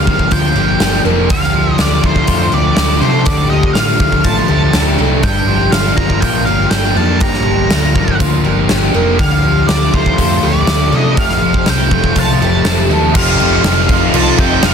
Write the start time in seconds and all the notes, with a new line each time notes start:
Already playing: G2 D3 F3 A#3 D4 F4 F5
0.07 G1 F3 A#3, kick
0.19 kick
0.31 D2 F3 A#3 F4 G5, kick, open hi-hat
0.56 G1 F3 A#3 G4
0.79 G1 D4, snare, open hi-hat
1.04 F1 A#3 A#4
1.29 D2 D3 G4 F5, kick, open hi-hat
1.43 snare
1.54 F3
1.78 D2 D3 D4 F4 D5, snare, open hi-hat
2.03 D2 F3 A3 C5, kick
2.16 kick
2.27 F2 F3 A3 F4, kick, open hi-hat
2.52 D2 F3 A3 G4 D5
2.76 D2 D4, snare, open hi-hat
3.01 C3 A3 A4 C5
3.25 D2 D3 G4 D5, kick, open hi-hat
3.50 D2 F3 D#5
3.63 kick
3.73 A2 D3 D4 F4 F5, snare, open hi-hat
3.99 D2 F3 A3, kick
4.12 kick
4.24 A1 F3 A3 F4 A5, kick, open hi-hat
4.48 D2 F3 A3 G4
4.73 D2 D4, snare, open hi-hat
4.98 C2 A3 A4
5.23 G1 G2 G4 G5, kick, open hi-hat
5.47 F3
5.72 G1 D3 D4 F4 F5, snare, open hi-hat
5.96 G1 F3 A#3 A#5, kick
6.10 kick
6.20 A#1 F3 A#3 F4 G5, kick, open hi-hat
6.45 G1 F3 A#3 G4 F5
6.70 G1 D4 G5, snare, open hi-hat
6.95 F2 A#3 A#4 A5
7.20 G1 G2 G4 A#5, kick, open hi-hat
7.34 snare
7.45 G1 F3
7.70 D2 D3 D4 F4, snare, open hi-hat
7.95 G1 F3 A#3, kick
8.08 kick
8.19 D2 F3 A#3 F4, kick, open hi-hat
8.44 G1 F3 A#3 G4
8.69 G1 D4, snare, open hi-hat
8.94 F1 A#3 A#4
9.19 D2 D3 G4 F5, kick, open hi-hat
9.43 F3
9.68 D2 D3 D4 F4 D5, snare, open hi-hat
9.93 D2 F3 A3 C5, kick
10.06 kick
10.18 F2 F3 A3 F4, kick, open hi-hat
10.42 D2 F3 A3 G4 D5
10.67 D2 D4, snare, open hi-hat
10.92 C3 A3 A4 D#5
11.17 F1 F2 G4 F5, kick, open hi-hat
11.30 snare
11.41 F1 F3
11.54 kick
11.66 C2 C3 C4 F4 G5, snare, open hi-hat
11.91 F1 F3 A3, kick
12.04 kick
12.15 C2 F3 A3 F4, kick, open hi-hat
12.19 A5
12.40 F1 F3 A3 G4
12.65 F1 C4, snare, open hi-hat
12.90 D#2 A3 A4
13.13 F1 F2 C3 F3 C4 D#4 G4 A4 D#5 F5 C6, kick, crash
13.38 F1 F2 F3 C4 D#4 A4, crash
13.42 C3
13.62 F1 F2 C3 F3 C4 D#4 F4 A4, snare, crash
13.88 F2 C3 F3, kick, crash
14.12 C2 F2 C3 F3 F4, crash
14.17 A5
14.37 F1 F2 C3 F3 C4 D#4 G4 A4 G5, kick, crash
14.61 F1 F2 C3 F3 C4 D#4 A4 F5, snare, crash